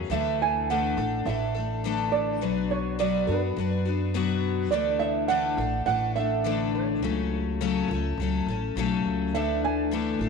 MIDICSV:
0, 0, Header, 1, 5, 480
1, 0, Start_track
1, 0, Tempo, 576923
1, 92, Time_signature, 4, 2, 24, 8
1, 8563, End_track
2, 0, Start_track
2, 0, Title_t, "Nylon-string guitar"
2, 0, Program_c, 0, 24
2, 95, Note_on_c, 0, 76, 95
2, 340, Note_off_c, 0, 76, 0
2, 349, Note_on_c, 0, 80, 95
2, 564, Note_off_c, 0, 80, 0
2, 583, Note_on_c, 0, 78, 86
2, 1024, Note_off_c, 0, 78, 0
2, 1050, Note_on_c, 0, 76, 86
2, 1760, Note_off_c, 0, 76, 0
2, 1763, Note_on_c, 0, 74, 88
2, 2251, Note_off_c, 0, 74, 0
2, 2254, Note_on_c, 0, 73, 82
2, 2476, Note_off_c, 0, 73, 0
2, 2494, Note_on_c, 0, 74, 82
2, 2721, Note_on_c, 0, 71, 72
2, 2740, Note_off_c, 0, 74, 0
2, 3652, Note_off_c, 0, 71, 0
2, 3916, Note_on_c, 0, 74, 89
2, 4155, Note_on_c, 0, 76, 90
2, 4171, Note_off_c, 0, 74, 0
2, 4391, Note_off_c, 0, 76, 0
2, 4395, Note_on_c, 0, 78, 96
2, 4866, Note_off_c, 0, 78, 0
2, 4876, Note_on_c, 0, 78, 84
2, 5119, Note_off_c, 0, 78, 0
2, 5122, Note_on_c, 0, 76, 91
2, 5616, Note_on_c, 0, 73, 77
2, 5621, Note_off_c, 0, 76, 0
2, 7500, Note_off_c, 0, 73, 0
2, 7775, Note_on_c, 0, 76, 88
2, 8020, Note_off_c, 0, 76, 0
2, 8025, Note_on_c, 0, 80, 99
2, 8563, Note_off_c, 0, 80, 0
2, 8563, End_track
3, 0, Start_track
3, 0, Title_t, "Tonewheel organ"
3, 0, Program_c, 1, 16
3, 7765, Note_on_c, 1, 52, 66
3, 7767, Note_on_c, 1, 57, 58
3, 7768, Note_on_c, 1, 62, 58
3, 7771, Note_on_c, 1, 69, 66
3, 8563, Note_off_c, 1, 52, 0
3, 8563, Note_off_c, 1, 57, 0
3, 8563, Note_off_c, 1, 62, 0
3, 8563, Note_off_c, 1, 69, 0
3, 8563, End_track
4, 0, Start_track
4, 0, Title_t, "Twelve-string acoustic guitar"
4, 0, Program_c, 2, 25
4, 0, Note_on_c, 2, 42, 82
4, 0, Note_on_c, 2, 54, 76
4, 0, Note_on_c, 2, 61, 85
4, 0, Note_on_c, 2, 68, 83
4, 81, Note_on_c, 2, 50, 71
4, 85, Note_off_c, 2, 54, 0
4, 88, Note_off_c, 2, 42, 0
4, 89, Note_on_c, 2, 52, 66
4, 93, Note_off_c, 2, 61, 0
4, 93, Note_on_c, 2, 57, 78
4, 97, Note_off_c, 2, 68, 0
4, 97, Note_on_c, 2, 62, 79
4, 106, Note_on_c, 2, 69, 81
4, 566, Note_off_c, 2, 50, 0
4, 570, Note_off_c, 2, 52, 0
4, 572, Note_off_c, 2, 57, 0
4, 578, Note_off_c, 2, 69, 0
4, 582, Note_on_c, 2, 50, 71
4, 584, Note_on_c, 2, 52, 79
4, 589, Note_on_c, 2, 57, 79
4, 590, Note_off_c, 2, 62, 0
4, 593, Note_on_c, 2, 62, 82
4, 597, Note_on_c, 2, 69, 76
4, 802, Note_off_c, 2, 69, 0
4, 812, Note_on_c, 2, 69, 51
4, 816, Note_off_c, 2, 50, 0
4, 818, Note_off_c, 2, 52, 0
4, 820, Note_off_c, 2, 57, 0
4, 822, Note_off_c, 2, 62, 0
4, 831, Note_on_c, 2, 62, 44
4, 842, Note_on_c, 2, 57, 41
4, 1048, Note_off_c, 2, 57, 0
4, 1051, Note_off_c, 2, 69, 0
4, 1052, Note_on_c, 2, 52, 54
4, 1058, Note_on_c, 2, 57, 54
4, 1061, Note_off_c, 2, 62, 0
4, 1071, Note_on_c, 2, 62, 57
4, 1077, Note_on_c, 2, 69, 58
4, 1276, Note_off_c, 2, 69, 0
4, 1286, Note_on_c, 2, 69, 51
4, 1291, Note_off_c, 2, 52, 0
4, 1293, Note_off_c, 2, 62, 0
4, 1294, Note_off_c, 2, 57, 0
4, 1303, Note_on_c, 2, 62, 45
4, 1317, Note_on_c, 2, 57, 39
4, 1529, Note_off_c, 2, 69, 0
4, 1532, Note_on_c, 2, 50, 71
4, 1533, Note_off_c, 2, 57, 0
4, 1537, Note_off_c, 2, 62, 0
4, 1540, Note_on_c, 2, 52, 74
4, 1543, Note_on_c, 2, 57, 81
4, 1547, Note_on_c, 2, 62, 76
4, 1556, Note_on_c, 2, 69, 83
4, 2004, Note_off_c, 2, 50, 0
4, 2007, Note_on_c, 2, 47, 64
4, 2010, Note_off_c, 2, 52, 0
4, 2013, Note_off_c, 2, 57, 0
4, 2014, Note_on_c, 2, 54, 70
4, 2016, Note_on_c, 2, 59, 70
4, 2018, Note_off_c, 2, 62, 0
4, 2021, Note_on_c, 2, 62, 73
4, 2023, Note_off_c, 2, 69, 0
4, 2027, Note_on_c, 2, 66, 69
4, 2476, Note_off_c, 2, 47, 0
4, 2477, Note_off_c, 2, 54, 0
4, 2484, Note_off_c, 2, 59, 0
4, 2486, Note_on_c, 2, 47, 75
4, 2487, Note_on_c, 2, 54, 78
4, 2494, Note_on_c, 2, 59, 83
4, 2495, Note_off_c, 2, 62, 0
4, 2495, Note_off_c, 2, 66, 0
4, 2499, Note_on_c, 2, 62, 75
4, 2505, Note_on_c, 2, 66, 85
4, 2713, Note_off_c, 2, 66, 0
4, 2723, Note_on_c, 2, 66, 49
4, 2728, Note_off_c, 2, 47, 0
4, 2728, Note_off_c, 2, 62, 0
4, 2729, Note_off_c, 2, 54, 0
4, 2732, Note_off_c, 2, 59, 0
4, 2738, Note_on_c, 2, 62, 43
4, 2756, Note_on_c, 2, 59, 41
4, 2966, Note_on_c, 2, 54, 53
4, 2967, Note_off_c, 2, 66, 0
4, 2971, Note_off_c, 2, 59, 0
4, 2974, Note_off_c, 2, 62, 0
4, 2981, Note_on_c, 2, 59, 59
4, 2990, Note_on_c, 2, 62, 61
4, 2999, Note_on_c, 2, 66, 57
4, 3197, Note_off_c, 2, 66, 0
4, 3207, Note_on_c, 2, 66, 50
4, 3208, Note_off_c, 2, 54, 0
4, 3212, Note_off_c, 2, 62, 0
4, 3216, Note_off_c, 2, 59, 0
4, 3222, Note_on_c, 2, 62, 45
4, 3234, Note_on_c, 2, 59, 42
4, 3442, Note_off_c, 2, 59, 0
4, 3446, Note_on_c, 2, 47, 85
4, 3449, Note_off_c, 2, 66, 0
4, 3450, Note_off_c, 2, 62, 0
4, 3451, Note_on_c, 2, 54, 83
4, 3452, Note_on_c, 2, 59, 85
4, 3460, Note_on_c, 2, 62, 90
4, 3464, Note_on_c, 2, 66, 88
4, 3920, Note_off_c, 2, 47, 0
4, 3924, Note_on_c, 2, 50, 68
4, 3927, Note_off_c, 2, 54, 0
4, 3930, Note_on_c, 2, 52, 72
4, 3931, Note_off_c, 2, 59, 0
4, 3931, Note_off_c, 2, 62, 0
4, 3935, Note_on_c, 2, 57, 80
4, 3937, Note_off_c, 2, 66, 0
4, 3941, Note_on_c, 2, 62, 78
4, 3943, Note_on_c, 2, 69, 81
4, 4386, Note_off_c, 2, 50, 0
4, 4395, Note_off_c, 2, 52, 0
4, 4396, Note_on_c, 2, 50, 82
4, 4400, Note_off_c, 2, 62, 0
4, 4405, Note_on_c, 2, 52, 80
4, 4407, Note_off_c, 2, 57, 0
4, 4410, Note_on_c, 2, 57, 87
4, 4410, Note_on_c, 2, 62, 83
4, 4417, Note_off_c, 2, 69, 0
4, 4420, Note_on_c, 2, 69, 89
4, 4635, Note_off_c, 2, 69, 0
4, 4643, Note_off_c, 2, 50, 0
4, 4645, Note_on_c, 2, 69, 56
4, 4648, Note_off_c, 2, 52, 0
4, 4650, Note_off_c, 2, 57, 0
4, 4651, Note_off_c, 2, 62, 0
4, 4662, Note_on_c, 2, 62, 46
4, 4668, Note_on_c, 2, 57, 42
4, 4873, Note_off_c, 2, 57, 0
4, 4875, Note_on_c, 2, 52, 53
4, 4882, Note_off_c, 2, 62, 0
4, 4883, Note_on_c, 2, 57, 55
4, 4888, Note_off_c, 2, 69, 0
4, 4892, Note_on_c, 2, 62, 64
4, 4904, Note_on_c, 2, 69, 66
4, 5113, Note_off_c, 2, 69, 0
4, 5123, Note_off_c, 2, 52, 0
4, 5123, Note_on_c, 2, 69, 50
4, 5127, Note_off_c, 2, 57, 0
4, 5131, Note_off_c, 2, 62, 0
4, 5140, Note_on_c, 2, 62, 48
4, 5155, Note_on_c, 2, 57, 44
4, 5361, Note_on_c, 2, 50, 76
4, 5364, Note_off_c, 2, 57, 0
4, 5367, Note_off_c, 2, 69, 0
4, 5368, Note_on_c, 2, 52, 81
4, 5372, Note_off_c, 2, 62, 0
4, 5374, Note_on_c, 2, 57, 84
4, 5378, Note_on_c, 2, 69, 91
4, 5382, Note_on_c, 2, 62, 83
4, 5841, Note_off_c, 2, 50, 0
4, 5842, Note_off_c, 2, 52, 0
4, 5844, Note_on_c, 2, 49, 73
4, 5846, Note_on_c, 2, 54, 70
4, 5853, Note_off_c, 2, 57, 0
4, 5856, Note_off_c, 2, 62, 0
4, 5856, Note_on_c, 2, 57, 66
4, 5859, Note_off_c, 2, 69, 0
4, 5860, Note_on_c, 2, 61, 82
4, 5862, Note_on_c, 2, 69, 69
4, 6320, Note_off_c, 2, 49, 0
4, 6322, Note_off_c, 2, 54, 0
4, 6328, Note_off_c, 2, 57, 0
4, 6329, Note_off_c, 2, 61, 0
4, 6330, Note_on_c, 2, 49, 84
4, 6332, Note_on_c, 2, 54, 79
4, 6332, Note_on_c, 2, 57, 84
4, 6339, Note_on_c, 2, 61, 98
4, 6341, Note_off_c, 2, 69, 0
4, 6344, Note_on_c, 2, 69, 96
4, 6570, Note_off_c, 2, 49, 0
4, 6570, Note_off_c, 2, 69, 0
4, 6571, Note_off_c, 2, 57, 0
4, 6572, Note_off_c, 2, 54, 0
4, 6575, Note_off_c, 2, 61, 0
4, 6580, Note_on_c, 2, 69, 63
4, 6598, Note_on_c, 2, 61, 50
4, 6611, Note_on_c, 2, 57, 44
4, 6816, Note_off_c, 2, 69, 0
4, 6821, Note_off_c, 2, 57, 0
4, 6821, Note_on_c, 2, 54, 59
4, 6824, Note_off_c, 2, 61, 0
4, 6831, Note_on_c, 2, 57, 63
4, 6838, Note_on_c, 2, 61, 70
4, 6847, Note_on_c, 2, 69, 72
4, 7048, Note_off_c, 2, 69, 0
4, 7056, Note_off_c, 2, 54, 0
4, 7058, Note_on_c, 2, 69, 59
4, 7061, Note_off_c, 2, 57, 0
4, 7064, Note_off_c, 2, 61, 0
4, 7073, Note_on_c, 2, 61, 50
4, 7083, Note_on_c, 2, 57, 44
4, 7294, Note_on_c, 2, 49, 87
4, 7295, Note_off_c, 2, 69, 0
4, 7296, Note_off_c, 2, 57, 0
4, 7300, Note_off_c, 2, 61, 0
4, 7301, Note_on_c, 2, 54, 85
4, 7306, Note_on_c, 2, 57, 90
4, 7310, Note_on_c, 2, 61, 89
4, 7314, Note_on_c, 2, 69, 90
4, 7773, Note_off_c, 2, 49, 0
4, 7775, Note_off_c, 2, 54, 0
4, 7776, Note_off_c, 2, 57, 0
4, 7776, Note_on_c, 2, 50, 75
4, 7778, Note_on_c, 2, 52, 76
4, 7781, Note_off_c, 2, 61, 0
4, 7783, Note_off_c, 2, 69, 0
4, 7786, Note_on_c, 2, 57, 69
4, 7787, Note_on_c, 2, 62, 74
4, 7793, Note_on_c, 2, 69, 75
4, 8239, Note_off_c, 2, 50, 0
4, 8245, Note_off_c, 2, 52, 0
4, 8249, Note_on_c, 2, 50, 72
4, 8251, Note_off_c, 2, 57, 0
4, 8255, Note_on_c, 2, 52, 76
4, 8256, Note_off_c, 2, 69, 0
4, 8261, Note_on_c, 2, 57, 78
4, 8262, Note_off_c, 2, 62, 0
4, 8266, Note_on_c, 2, 62, 79
4, 8266, Note_on_c, 2, 69, 90
4, 8483, Note_off_c, 2, 69, 0
4, 8490, Note_off_c, 2, 50, 0
4, 8493, Note_off_c, 2, 52, 0
4, 8493, Note_on_c, 2, 69, 52
4, 8496, Note_off_c, 2, 57, 0
4, 8497, Note_off_c, 2, 62, 0
4, 8507, Note_on_c, 2, 62, 43
4, 8520, Note_on_c, 2, 57, 42
4, 8563, Note_off_c, 2, 57, 0
4, 8563, Note_off_c, 2, 62, 0
4, 8563, Note_off_c, 2, 69, 0
4, 8563, End_track
5, 0, Start_track
5, 0, Title_t, "Upright bass"
5, 0, Program_c, 3, 32
5, 81, Note_on_c, 3, 38, 85
5, 773, Note_off_c, 3, 38, 0
5, 807, Note_on_c, 3, 33, 90
5, 1037, Note_off_c, 3, 33, 0
5, 1044, Note_on_c, 3, 33, 90
5, 1998, Note_off_c, 3, 33, 0
5, 1998, Note_on_c, 3, 35, 88
5, 2691, Note_off_c, 3, 35, 0
5, 2730, Note_on_c, 3, 42, 85
5, 2958, Note_off_c, 3, 42, 0
5, 2968, Note_on_c, 3, 42, 88
5, 3916, Note_off_c, 3, 42, 0
5, 3916, Note_on_c, 3, 38, 88
5, 4610, Note_off_c, 3, 38, 0
5, 4638, Note_on_c, 3, 33, 92
5, 4869, Note_off_c, 3, 33, 0
5, 4874, Note_on_c, 3, 33, 95
5, 5836, Note_off_c, 3, 33, 0
5, 5836, Note_on_c, 3, 37, 90
5, 6530, Note_off_c, 3, 37, 0
5, 6558, Note_on_c, 3, 37, 89
5, 6792, Note_off_c, 3, 37, 0
5, 6802, Note_on_c, 3, 37, 87
5, 7036, Note_off_c, 3, 37, 0
5, 7041, Note_on_c, 3, 33, 75
5, 7262, Note_off_c, 3, 33, 0
5, 7284, Note_on_c, 3, 35, 79
5, 7503, Note_off_c, 3, 35, 0
5, 7530, Note_on_c, 3, 37, 79
5, 7773, Note_off_c, 3, 37, 0
5, 7773, Note_on_c, 3, 38, 87
5, 8459, Note_off_c, 3, 38, 0
5, 8480, Note_on_c, 3, 33, 88
5, 8563, Note_off_c, 3, 33, 0
5, 8563, End_track
0, 0, End_of_file